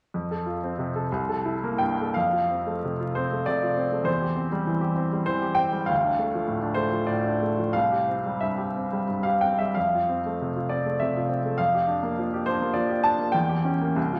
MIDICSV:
0, 0, Header, 1, 2, 480
1, 0, Start_track
1, 0, Key_signature, -1, "major"
1, 0, Tempo, 641026
1, 100, Time_signature, 3, 2, 24, 8
1, 1059, Tempo, 729927
1, 1539, Tempo, 652174
1, 2499, Tempo, 612870
1, 4419, Tempo, 589391
1, 5379, Tempo, 668896
1, 7299, Tempo, 634249
1, 7779, Tempo, 589971
1, 10179, Tempo, 622407
1, 10841, End_track
2, 0, Start_track
2, 0, Title_t, "Grand piano"
2, 0, Program_c, 0, 0
2, 107, Note_on_c, 0, 41, 38
2, 229, Control_c, 0, 64, 127
2, 234, Note_on_c, 0, 69, 34
2, 345, Note_on_c, 0, 65, 33
2, 420, Note_off_c, 0, 69, 0
2, 476, Note_on_c, 0, 60, 33
2, 533, Note_off_c, 0, 65, 0
2, 587, Note_on_c, 0, 48, 39
2, 655, Note_off_c, 0, 60, 0
2, 715, Note_on_c, 0, 69, 39
2, 769, Note_off_c, 0, 48, 0
2, 794, Note_off_c, 0, 41, 0
2, 822, Note_off_c, 0, 69, 0
2, 823, Control_c, 0, 64, 0
2, 838, Note_on_c, 0, 36, 50
2, 964, Note_on_c, 0, 69, 38
2, 971, Control_c, 0, 64, 127
2, 1085, Note_on_c, 0, 64, 41
2, 1142, Note_off_c, 0, 69, 0
2, 1205, Note_on_c, 0, 58, 40
2, 1263, Note_off_c, 0, 64, 0
2, 1302, Note_on_c, 0, 79, 62
2, 1321, Note_on_c, 0, 43, 38
2, 1391, Note_off_c, 0, 58, 0
2, 1450, Note_on_c, 0, 69, 32
2, 1504, Note_off_c, 0, 43, 0
2, 1530, Note_off_c, 0, 36, 0
2, 1537, Note_on_c, 0, 77, 66
2, 1539, Note_off_c, 0, 79, 0
2, 1552, Control_c, 0, 64, 0
2, 1553, Note_off_c, 0, 69, 0
2, 1555, Note_on_c, 0, 41, 43
2, 1672, Note_on_c, 0, 65, 33
2, 1690, Control_c, 0, 64, 127
2, 1805, Note_on_c, 0, 60, 29
2, 1861, Note_off_c, 0, 65, 0
2, 1924, Note_on_c, 0, 57, 31
2, 1988, Note_off_c, 0, 60, 0
2, 2053, Note_on_c, 0, 48, 33
2, 2108, Note_off_c, 0, 57, 0
2, 2165, Note_on_c, 0, 65, 33
2, 2232, Note_off_c, 0, 48, 0
2, 2265, Note_off_c, 0, 77, 0
2, 2280, Note_on_c, 0, 72, 56
2, 2295, Note_on_c, 0, 60, 34
2, 2346, Note_off_c, 0, 65, 0
2, 2409, Note_on_c, 0, 57, 33
2, 2469, Note_off_c, 0, 60, 0
2, 2507, Note_off_c, 0, 72, 0
2, 2508, Note_on_c, 0, 74, 64
2, 2521, Note_on_c, 0, 48, 32
2, 2586, Note_off_c, 0, 57, 0
2, 2640, Note_on_c, 0, 65, 37
2, 2704, Note_off_c, 0, 48, 0
2, 2751, Note_on_c, 0, 60, 35
2, 2823, Note_off_c, 0, 65, 0
2, 2872, Note_on_c, 0, 57, 34
2, 2938, Note_off_c, 0, 60, 0
2, 2959, Note_off_c, 0, 41, 0
2, 2961, Note_on_c, 0, 40, 43
2, 2969, Note_on_c, 0, 72, 64
2, 2985, Note_off_c, 0, 74, 0
2, 2987, Note_off_c, 0, 57, 0
2, 2996, Control_c, 0, 64, 0
2, 3102, Note_on_c, 0, 67, 33
2, 3121, Control_c, 0, 64, 127
2, 3214, Note_on_c, 0, 60, 36
2, 3292, Note_off_c, 0, 67, 0
2, 3338, Note_on_c, 0, 55, 37
2, 3407, Note_off_c, 0, 60, 0
2, 3455, Note_on_c, 0, 52, 39
2, 3528, Note_off_c, 0, 55, 0
2, 3564, Note_on_c, 0, 67, 39
2, 3645, Note_off_c, 0, 52, 0
2, 3679, Note_on_c, 0, 60, 33
2, 3758, Note_off_c, 0, 67, 0
2, 3812, Note_on_c, 0, 55, 36
2, 3876, Note_off_c, 0, 60, 0
2, 3904, Note_off_c, 0, 72, 0
2, 3916, Note_on_c, 0, 72, 67
2, 3929, Note_on_c, 0, 52, 37
2, 4005, Note_off_c, 0, 55, 0
2, 4041, Note_on_c, 0, 67, 38
2, 4126, Note_off_c, 0, 52, 0
2, 4142, Note_on_c, 0, 79, 76
2, 4156, Note_on_c, 0, 60, 39
2, 4170, Note_off_c, 0, 72, 0
2, 4245, Note_off_c, 0, 67, 0
2, 4283, Note_on_c, 0, 55, 36
2, 4361, Note_off_c, 0, 60, 0
2, 4377, Note_off_c, 0, 40, 0
2, 4389, Note_on_c, 0, 77, 69
2, 4401, Note_off_c, 0, 79, 0
2, 4409, Note_on_c, 0, 38, 43
2, 4411, Note_off_c, 0, 55, 0
2, 4434, Control_c, 0, 64, 0
2, 4535, Note_on_c, 0, 62, 34
2, 4574, Control_c, 0, 64, 127
2, 4654, Note_on_c, 0, 57, 35
2, 4725, Note_off_c, 0, 62, 0
2, 4783, Note_on_c, 0, 53, 31
2, 4842, Note_off_c, 0, 57, 0
2, 4886, Note_on_c, 0, 45, 34
2, 4966, Note_off_c, 0, 53, 0
2, 5007, Note_on_c, 0, 62, 37
2, 5079, Note_off_c, 0, 45, 0
2, 5106, Note_on_c, 0, 72, 62
2, 5114, Note_off_c, 0, 77, 0
2, 5126, Note_on_c, 0, 57, 34
2, 5202, Note_off_c, 0, 62, 0
2, 5252, Note_on_c, 0, 53, 35
2, 5326, Note_off_c, 0, 57, 0
2, 5368, Note_off_c, 0, 72, 0
2, 5368, Note_on_c, 0, 74, 52
2, 5384, Note_on_c, 0, 45, 34
2, 5447, Note_off_c, 0, 53, 0
2, 5501, Note_on_c, 0, 62, 32
2, 5566, Note_off_c, 0, 45, 0
2, 5624, Note_on_c, 0, 57, 33
2, 5687, Note_off_c, 0, 62, 0
2, 5740, Note_on_c, 0, 53, 31
2, 5811, Note_off_c, 0, 57, 0
2, 5821, Note_off_c, 0, 38, 0
2, 5847, Note_on_c, 0, 77, 72
2, 5849, Note_off_c, 0, 74, 0
2, 5858, Note_off_c, 0, 53, 0
2, 5858, Note_on_c, 0, 36, 39
2, 5869, Control_c, 0, 64, 0
2, 5976, Control_c, 0, 64, 127
2, 5979, Note_on_c, 0, 67, 32
2, 6100, Note_on_c, 0, 60, 30
2, 6174, Note_off_c, 0, 67, 0
2, 6227, Note_on_c, 0, 55, 29
2, 6295, Note_off_c, 0, 60, 0
2, 6331, Note_on_c, 0, 76, 53
2, 6339, Note_off_c, 0, 77, 0
2, 6344, Note_on_c, 0, 43, 30
2, 6419, Note_off_c, 0, 55, 0
2, 6452, Note_on_c, 0, 67, 30
2, 6536, Note_off_c, 0, 43, 0
2, 6586, Note_on_c, 0, 60, 29
2, 6648, Note_off_c, 0, 67, 0
2, 6706, Note_on_c, 0, 55, 31
2, 6774, Note_off_c, 0, 60, 0
2, 6814, Note_off_c, 0, 76, 0
2, 6817, Note_on_c, 0, 43, 28
2, 6893, Note_off_c, 0, 55, 0
2, 6924, Note_on_c, 0, 77, 60
2, 6937, Note_on_c, 0, 67, 34
2, 7011, Note_off_c, 0, 43, 0
2, 7053, Note_off_c, 0, 77, 0
2, 7053, Note_on_c, 0, 79, 60
2, 7064, Note_on_c, 0, 60, 32
2, 7133, Note_off_c, 0, 67, 0
2, 7178, Note_off_c, 0, 79, 0
2, 7178, Note_on_c, 0, 76, 55
2, 7190, Note_on_c, 0, 55, 29
2, 7255, Note_off_c, 0, 60, 0
2, 7273, Note_off_c, 0, 36, 0
2, 7293, Note_on_c, 0, 77, 61
2, 7298, Note_off_c, 0, 76, 0
2, 7304, Note_off_c, 0, 55, 0
2, 7304, Note_on_c, 0, 41, 41
2, 7314, Control_c, 0, 64, 0
2, 7444, Note_on_c, 0, 65, 32
2, 7463, Control_c, 0, 64, 127
2, 7554, Note_on_c, 0, 60, 29
2, 7625, Note_off_c, 0, 65, 0
2, 7682, Note_on_c, 0, 57, 29
2, 7739, Note_off_c, 0, 60, 0
2, 7797, Note_on_c, 0, 48, 30
2, 7866, Note_off_c, 0, 57, 0
2, 7918, Note_on_c, 0, 65, 32
2, 7988, Note_off_c, 0, 48, 0
2, 8025, Note_off_c, 0, 77, 0
2, 8027, Note_on_c, 0, 74, 53
2, 8040, Note_on_c, 0, 60, 30
2, 8110, Note_off_c, 0, 65, 0
2, 8161, Note_on_c, 0, 57, 29
2, 8231, Note_off_c, 0, 60, 0
2, 8273, Note_off_c, 0, 74, 0
2, 8274, Note_on_c, 0, 76, 54
2, 8288, Note_on_c, 0, 48, 32
2, 8351, Note_off_c, 0, 57, 0
2, 8411, Note_on_c, 0, 65, 33
2, 8473, Note_off_c, 0, 48, 0
2, 8512, Note_on_c, 0, 60, 36
2, 8593, Note_off_c, 0, 65, 0
2, 8645, Note_on_c, 0, 57, 32
2, 8703, Note_off_c, 0, 60, 0
2, 8721, Note_off_c, 0, 41, 0
2, 8746, Note_on_c, 0, 77, 74
2, 8751, Note_off_c, 0, 76, 0
2, 8758, Note_off_c, 0, 57, 0
2, 8759, Note_on_c, 0, 41, 41
2, 8763, Control_c, 0, 64, 0
2, 8883, Note_on_c, 0, 67, 34
2, 8891, Control_c, 0, 64, 127
2, 8990, Note_on_c, 0, 62, 34
2, 9073, Note_off_c, 0, 67, 0
2, 9114, Note_on_c, 0, 58, 33
2, 9187, Note_off_c, 0, 62, 0
2, 9240, Note_on_c, 0, 53, 36
2, 9308, Note_off_c, 0, 58, 0
2, 9362, Note_on_c, 0, 67, 37
2, 9429, Note_off_c, 0, 53, 0
2, 9463, Note_on_c, 0, 72, 68
2, 9471, Note_off_c, 0, 77, 0
2, 9486, Note_on_c, 0, 62, 36
2, 9546, Note_off_c, 0, 67, 0
2, 9589, Note_on_c, 0, 58, 34
2, 9665, Note_off_c, 0, 62, 0
2, 9689, Note_on_c, 0, 74, 57
2, 9700, Note_off_c, 0, 72, 0
2, 9707, Note_on_c, 0, 53, 37
2, 9774, Note_off_c, 0, 58, 0
2, 9817, Note_on_c, 0, 67, 37
2, 9892, Note_off_c, 0, 53, 0
2, 9931, Note_off_c, 0, 74, 0
2, 9933, Note_on_c, 0, 81, 76
2, 9949, Note_on_c, 0, 62, 40
2, 10009, Note_off_c, 0, 67, 0
2, 10056, Note_on_c, 0, 58, 35
2, 10137, Note_off_c, 0, 62, 0
2, 10152, Note_off_c, 0, 41, 0
2, 10164, Note_on_c, 0, 79, 70
2, 10178, Note_off_c, 0, 81, 0
2, 10180, Note_off_c, 0, 58, 0
2, 10182, Note_on_c, 0, 40, 46
2, 10196, Control_c, 0, 64, 0
2, 10296, Note_on_c, 0, 67, 36
2, 10325, Control_c, 0, 64, 127
2, 10417, Note_on_c, 0, 61, 38
2, 10488, Note_off_c, 0, 67, 0
2, 10545, Note_on_c, 0, 58, 35
2, 10610, Note_off_c, 0, 61, 0
2, 10645, Note_off_c, 0, 40, 0
2, 10657, Note_on_c, 0, 36, 45
2, 10662, Note_off_c, 0, 58, 0
2, 10674, Control_c, 0, 64, 0
2, 10787, Note_on_c, 0, 65, 38
2, 10792, Control_c, 0, 64, 127
2, 10841, Note_off_c, 0, 36, 0
2, 10841, Note_off_c, 0, 65, 0
2, 10841, Note_off_c, 0, 79, 0
2, 10841, End_track
0, 0, End_of_file